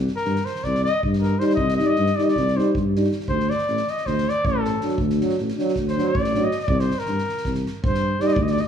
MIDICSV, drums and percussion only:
0, 0, Header, 1, 2, 480
1, 0, Start_track
1, 0, Tempo, 380228
1, 1991, Time_signature, 9, 3, 24, 8
1, 5821, Tempo, 375235
1, 11025, End_track
2, 0, Start_track
2, 0, Title_t, "Drums"
2, 94, Note_on_c, 9, 38, 25
2, 214, Note_off_c, 9, 38, 0
2, 214, Note_on_c, 9, 38, 24
2, 315, Note_off_c, 9, 38, 0
2, 315, Note_on_c, 9, 38, 25
2, 441, Note_off_c, 9, 38, 0
2, 449, Note_on_c, 9, 38, 28
2, 575, Note_off_c, 9, 38, 0
2, 579, Note_on_c, 9, 38, 31
2, 696, Note_off_c, 9, 38, 0
2, 696, Note_on_c, 9, 38, 28
2, 802, Note_off_c, 9, 38, 0
2, 802, Note_on_c, 9, 38, 23
2, 805, Note_on_c, 9, 36, 53
2, 928, Note_off_c, 9, 38, 0
2, 932, Note_off_c, 9, 36, 0
2, 943, Note_on_c, 9, 38, 24
2, 1070, Note_off_c, 9, 38, 0
2, 1079, Note_on_c, 9, 38, 25
2, 1206, Note_off_c, 9, 38, 0
2, 1303, Note_on_c, 9, 36, 78
2, 1426, Note_on_c, 9, 38, 23
2, 1429, Note_off_c, 9, 36, 0
2, 1553, Note_off_c, 9, 38, 0
2, 1554, Note_on_c, 9, 38, 27
2, 1681, Note_off_c, 9, 38, 0
2, 1769, Note_on_c, 9, 38, 29
2, 1889, Note_off_c, 9, 38, 0
2, 1889, Note_on_c, 9, 38, 21
2, 1985, Note_on_c, 9, 36, 79
2, 2016, Note_off_c, 9, 38, 0
2, 2111, Note_off_c, 9, 36, 0
2, 2125, Note_on_c, 9, 38, 30
2, 2251, Note_off_c, 9, 38, 0
2, 2258, Note_on_c, 9, 38, 28
2, 2385, Note_off_c, 9, 38, 0
2, 2470, Note_on_c, 9, 38, 20
2, 2596, Note_off_c, 9, 38, 0
2, 2603, Note_on_c, 9, 38, 24
2, 2729, Note_off_c, 9, 38, 0
2, 2755, Note_on_c, 9, 38, 25
2, 2879, Note_off_c, 9, 38, 0
2, 2879, Note_on_c, 9, 38, 24
2, 2976, Note_on_c, 9, 36, 45
2, 2989, Note_off_c, 9, 38, 0
2, 2989, Note_on_c, 9, 38, 23
2, 3102, Note_off_c, 9, 36, 0
2, 3115, Note_off_c, 9, 38, 0
2, 3127, Note_on_c, 9, 38, 21
2, 3253, Note_off_c, 9, 38, 0
2, 3261, Note_on_c, 9, 38, 26
2, 3388, Note_off_c, 9, 38, 0
2, 3470, Note_on_c, 9, 36, 81
2, 3597, Note_off_c, 9, 36, 0
2, 3727, Note_on_c, 9, 38, 22
2, 3833, Note_off_c, 9, 38, 0
2, 3833, Note_on_c, 9, 38, 22
2, 3935, Note_off_c, 9, 38, 0
2, 3935, Note_on_c, 9, 38, 24
2, 4039, Note_off_c, 9, 38, 0
2, 4039, Note_on_c, 9, 38, 21
2, 4140, Note_on_c, 9, 36, 75
2, 4165, Note_off_c, 9, 38, 0
2, 4266, Note_off_c, 9, 36, 0
2, 4285, Note_on_c, 9, 38, 21
2, 4411, Note_off_c, 9, 38, 0
2, 4419, Note_on_c, 9, 38, 23
2, 4521, Note_off_c, 9, 38, 0
2, 4521, Note_on_c, 9, 38, 23
2, 4635, Note_off_c, 9, 38, 0
2, 4635, Note_on_c, 9, 38, 20
2, 4757, Note_off_c, 9, 38, 0
2, 4757, Note_on_c, 9, 38, 27
2, 4883, Note_off_c, 9, 38, 0
2, 4890, Note_on_c, 9, 38, 28
2, 5014, Note_off_c, 9, 38, 0
2, 5014, Note_on_c, 9, 38, 22
2, 5127, Note_on_c, 9, 36, 51
2, 5133, Note_off_c, 9, 38, 0
2, 5133, Note_on_c, 9, 38, 24
2, 5253, Note_off_c, 9, 36, 0
2, 5259, Note_off_c, 9, 38, 0
2, 5275, Note_on_c, 9, 38, 27
2, 5401, Note_off_c, 9, 38, 0
2, 5411, Note_on_c, 9, 38, 22
2, 5537, Note_off_c, 9, 38, 0
2, 5613, Note_on_c, 9, 36, 93
2, 5739, Note_off_c, 9, 36, 0
2, 5863, Note_on_c, 9, 38, 28
2, 5991, Note_off_c, 9, 38, 0
2, 6071, Note_on_c, 9, 38, 32
2, 6175, Note_off_c, 9, 38, 0
2, 6175, Note_on_c, 9, 38, 21
2, 6293, Note_on_c, 9, 36, 85
2, 6303, Note_off_c, 9, 38, 0
2, 6421, Note_off_c, 9, 36, 0
2, 6439, Note_on_c, 9, 38, 29
2, 6567, Note_off_c, 9, 38, 0
2, 6584, Note_on_c, 9, 38, 31
2, 6691, Note_off_c, 9, 38, 0
2, 6691, Note_on_c, 9, 38, 29
2, 6801, Note_off_c, 9, 38, 0
2, 6801, Note_on_c, 9, 38, 22
2, 6929, Note_off_c, 9, 38, 0
2, 6935, Note_on_c, 9, 38, 28
2, 7063, Note_off_c, 9, 38, 0
2, 7073, Note_on_c, 9, 38, 33
2, 7190, Note_off_c, 9, 38, 0
2, 7190, Note_on_c, 9, 38, 27
2, 7284, Note_off_c, 9, 38, 0
2, 7284, Note_on_c, 9, 38, 27
2, 7287, Note_on_c, 9, 36, 68
2, 7412, Note_off_c, 9, 38, 0
2, 7415, Note_off_c, 9, 36, 0
2, 7439, Note_on_c, 9, 38, 30
2, 7567, Note_off_c, 9, 38, 0
2, 7576, Note_on_c, 9, 38, 27
2, 7704, Note_off_c, 9, 38, 0
2, 7789, Note_on_c, 9, 36, 89
2, 7903, Note_on_c, 9, 38, 31
2, 7917, Note_off_c, 9, 36, 0
2, 8031, Note_off_c, 9, 38, 0
2, 8037, Note_on_c, 9, 38, 31
2, 8165, Note_off_c, 9, 38, 0
2, 8251, Note_on_c, 9, 38, 38
2, 8360, Note_off_c, 9, 38, 0
2, 8360, Note_on_c, 9, 38, 27
2, 8468, Note_on_c, 9, 36, 104
2, 8488, Note_off_c, 9, 38, 0
2, 8596, Note_off_c, 9, 36, 0
2, 8610, Note_on_c, 9, 38, 36
2, 8738, Note_off_c, 9, 38, 0
2, 8757, Note_on_c, 9, 38, 35
2, 8856, Note_off_c, 9, 38, 0
2, 8856, Note_on_c, 9, 38, 31
2, 8953, Note_off_c, 9, 38, 0
2, 8953, Note_on_c, 9, 38, 30
2, 9080, Note_off_c, 9, 38, 0
2, 9110, Note_on_c, 9, 38, 32
2, 9238, Note_off_c, 9, 38, 0
2, 9246, Note_on_c, 9, 38, 34
2, 9354, Note_off_c, 9, 38, 0
2, 9354, Note_on_c, 9, 38, 32
2, 9450, Note_off_c, 9, 38, 0
2, 9450, Note_on_c, 9, 38, 26
2, 9453, Note_on_c, 9, 36, 75
2, 9572, Note_off_c, 9, 38, 0
2, 9572, Note_on_c, 9, 38, 28
2, 9581, Note_off_c, 9, 36, 0
2, 9699, Note_off_c, 9, 38, 0
2, 9723, Note_on_c, 9, 38, 32
2, 9851, Note_off_c, 9, 38, 0
2, 9948, Note_on_c, 9, 36, 108
2, 10076, Note_off_c, 9, 36, 0
2, 10082, Note_on_c, 9, 38, 31
2, 10210, Note_off_c, 9, 38, 0
2, 10409, Note_on_c, 9, 38, 31
2, 10516, Note_off_c, 9, 38, 0
2, 10516, Note_on_c, 9, 38, 27
2, 10621, Note_on_c, 9, 36, 102
2, 10644, Note_off_c, 9, 38, 0
2, 10749, Note_off_c, 9, 36, 0
2, 10754, Note_on_c, 9, 38, 32
2, 10882, Note_off_c, 9, 38, 0
2, 10883, Note_on_c, 9, 38, 31
2, 11011, Note_off_c, 9, 38, 0
2, 11025, End_track
0, 0, End_of_file